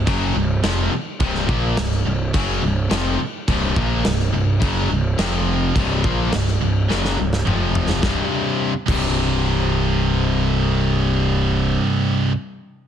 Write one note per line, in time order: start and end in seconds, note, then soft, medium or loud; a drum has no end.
0.07 0.33 F#1 medium
0.07 0.35 F#2 loud
0.07 0.35 C#3 medium
0.07 0.35 F#3 loud
0.07 kick loud
0.07 crash medium
0.34 0.61 C1 medium
0.34 0.58 C2 medium
0.34 0.59 G2 medium
0.63 0.90 F1 loud
0.63 0.92 F2 loud
0.63 0.92 C3 loud
0.63 0.92 F3 loud
0.63 snare loud
0.63 crash medium
0.91 muted picked electric bass stroke medium
0.91 muted overdriven electric guitar stroke medium
0.91 muted distorted electric guitar stroke medium
1.20 1.47 C1 loud
1.20 1.49 C2 medium
1.20 1.49 G2 loud
1.20 1.49 C3 loud
1.20 kick loud
1.20 crash medium
1.35 snare soft
1.48 1.75 A#1 medium
1.48 1.77 A#2 medium
1.48 1.77 F3 loud
1.48 1.78 A#3 loud
1.48 kick loud
1.77 2.01 C2 medium
1.77 2.01 G2 medium
1.77 snare loud
1.77 crash medium
1.91 snare soft
2.05 2.32 C1 medium
2.05 2.29 C2 medium
2.05 2.29 G2 medium
2.34 2.61 F#1 medium
2.34 2.62 F#2 loud
2.34 2.62 C#3 loud
2.34 2.62 F#3 loud
2.34 kick loud
2.34 crash medium
2.62 2.89 C1 medium
2.62 2.85 C2 medium
2.62 2.86 G2 medium
2.90 3.17 F1 loud
2.90 3.18 F2 medium
2.90 3.18 C3 medium
2.90 3.19 F3 loud
2.90 snare loud
2.90 crash medium
3.19 muted distorted electric guitar stroke medium
3.19 muted picked electric bass stroke soft
3.19 muted overdriven electric guitar stroke medium
3.48 3.75 C1 loud
3.48 3.76 C2 loud
3.48 3.76 G2 loud
3.48 3.76 C3 loud
3.48 kick loud
3.48 crash medium
3.76 4.03 A#1 loud
3.76 4.04 A#2 medium
3.76 4.05 F3 medium
3.76 4.05 A#3 loud
3.76 kick loud
4.05 4.31 C1 medium
4.05 4.28 C2 medium
4.05 4.28 G2 medium
4.05 snare loud
4.05 crash medium
4.20 snare soft
4.33 4.60 C1 medium
4.33 4.56 C2 medium
4.33 4.56 G2 medium
4.62 4.88 F#1 medium
4.62 4.89 F#2 medium
4.62 4.89 C#3 loud
4.62 4.90 F#3 loud
4.62 kick loud
4.62 crash medium
4.90 5.17 C1 medium
4.90 5.13 C2 medium
4.90 5.13 G2 medium
5.18 5.71 F1 loud
5.18 5.74 F2 loud
5.18 5.75 C3 loud
5.18 5.75 F3 loud
5.18 snare loud
5.18 crash medium
5.74 6.02 C1 medium
5.74 6.03 C2 medium
5.74 6.03 G2 loud
5.74 6.03 C3 loud
5.74 kick loud
5.74 crash medium
6.03 6.31 A#1 medium
6.03 6.31 A#2 medium
6.03 6.32 F3 loud
6.03 6.32 A#3 loud
6.03 kick loud
6.32 6.59 C1 medium
6.32 6.55 C2 medium
6.32 6.55 G2 medium
6.32 snare loud
6.32 crash medium
6.47 snare soft
6.61 6.88 C1 medium
6.61 6.83 C2 medium
6.61 6.84 G2 medium
6.88 7.17 F#1 medium
6.88 7.16 F#2 loud
6.88 7.17 C#3 loud
6.88 7.17 F#3 loud
6.88 snare medium
7.05 snare medium
7.17 7.45 C1 medium
7.17 7.40 C2 medium
7.17 7.40 G2 medium
7.33 snare medium
7.46 8.00 F1 loud
7.46 8.01 F2 loud
7.46 8.02 C3 medium
7.46 8.02 F3 loud
7.46 mid tom medium
7.75 floor tom loud
7.89 snare medium
8.02 8.19 C1 medium
8.02 8.71 C2 loud
8.02 8.71 G2 loud
8.02 8.71 C3 loud
8.02 kick loud
8.02 snare medium
8.86 11.77 C1 medium
8.86 12.32 C2 loud
8.86 12.32 G2 loud
8.86 kick loud
8.86 crash loud
8.91 12.32 C3 loud